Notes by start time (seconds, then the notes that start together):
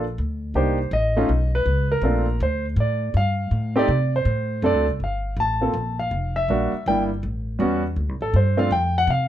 Already playing: A#1
0.18 D2
0.54 C2 A#3 D4 D#4 G4 C5
0.91 A1 D#5
1.16 A3 C#4 D#4 F4
1.29 B1
1.55 B4
1.66 C#2
1.92 A#4
2.02 A#1 A3 C4 D4 F4
2.40 D2 C5
2.76 A2 D5
3.14 G2 F5
3.51 A2
3.76 A3 C4 D#4 G4 D5
3.88 C3
4.16 C5
4.25 A2
4.62 F#2 A3 C4 D4 A4 D5
4.74 D2
4.88 C2
5.00 G1 F5
5.37 A1 A5
5.61 A#3 C4 F4 A4
5.74 A#1
5.99 F5
6.11 F1
6.36 E5
6.48 A#1 G3 A#3 D4 F#4
6.73 muted upright bass stroke
6.86 G1 G3 A#3 D4 E4 G5
7.23 A1
7.59 E2 G3 B3 C#4 F#4
7.96 D2
8.09 C2
8.21 A1 A4
8.34 G2 C5
8.57 A3 C4 D4 F4 F5
8.71 F2 G5
8.98 F#5
9.07 C3 F5